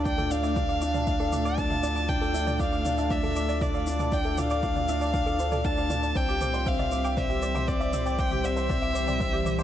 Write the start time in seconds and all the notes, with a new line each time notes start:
Already playing: D2 A3 D4 F4 A4 D5 F5 A5
0.05 D4 G5 D6, kick, shaker
0.18 A4 D6, mid tom, shaker
0.31 D4 D5 F5, shaker
0.43 D5 E5, shaker
0.56 D4 D5, kick, mid tom, shaker
0.69 F5 D6, shaker
0.82 D4 D6, shaker
0.94 D5 A5, mid tom, shaker
1.07 D4 E5, kick, shaker
1.20 A4 D5, shaker
1.32 D4 D6, mid tom, shaker
1.45 D5 D6, shaker
1.58 D4 D5 A5, kick, shaker
1.70 E5 F5, mid tom, shaker
1.83 D4 D5, shaker
1.96 A5 D6, shaker
2.09 D4 G5 D6, kick, mid tom, shaker
2.21 A4 D5, shaker
2.34 D4 E5, shaker
2.47 D5, mid tom, shaker
2.60 D4 F5 D6, kick, shaker
2.72 F5 D6, shaker
2.85 D4 D5, mid tom, shaker
2.98 E5 A5, shaker
3.10 D4 D5 E5, kick, shaker
3.23 A4 D6, mid tom, shaker
3.36 D4 D6, shaker
3.49 D5, shaker
3.61 D4 D5 E5, kick, mid tom, shaker
3.74 D5 F5, shaker
3.87 D4 D6, shaker
3.99 A5 D6, mid tom, shaker
4.12 D4 D5 G5, kick, shaker
4.25 A4 E5, shaker
4.38 D4 D5 F5, mid tom, shaker
4.50 D5 D6, shaker
4.63 D4 D6, kick, shaker
4.76 D5 F5, mid tom, shaker
4.88 D4 E5, shaker
5.01 D5 A5, shaker
5.14 D4 D6, kick, mid tom, shaker
5.26 A4 D6, shaker
5.39 D4 C5, shaker
5.52 A4 D5, mid tom, shaker
5.64 D4 F5 A5, kick, shaker
5.77 D5 F5, shaker
5.90 D4 D5, mid tom, shaker
6.03 D5 A5, shaker
6.15 C2 E3 G3 C4 C5 D5 G5, kick, shaker
6.28 G4 D6, shaker
6.41 C4 D6, mid tom, shaker
6.54 C5 D5, shaker
6.66 C4 E5 F5, kick, shaker
6.79 D5 E5, mid tom, shaker
6.92 C4 D6, shaker
7.04 G5 D6, shaker
7.17 C4 D5 E5, kick, mid tom, shaker
7.29 G4 E5, shaker
7.42 C4 D5, shaker
7.55 C5 D6, mid tom, shaker
7.67 C4 D5 D6, kick, shaker
7.80 D5 E5, shaker
7.93 C4 E5, mid tom, shaker
8.06 D5 G5, shaker
8.18 C4 G5 D6, kick, shaker
8.31 G4 D6, mid tom, shaker
8.44 C4 D5 E5, shaker
8.57 C5 E5, shaker
8.69 C4 D5, kick, mid tom, shaker
8.82 E5 D6, shaker
8.94 C4 D6, shaker
9.07 D5 G5, mid tom, shaker
9.20 C4 E5, kick, shaker
9.33 G4 D5, shaker
9.46 C4 D6, mid tom, shaker
9.59 C5 D6, shaker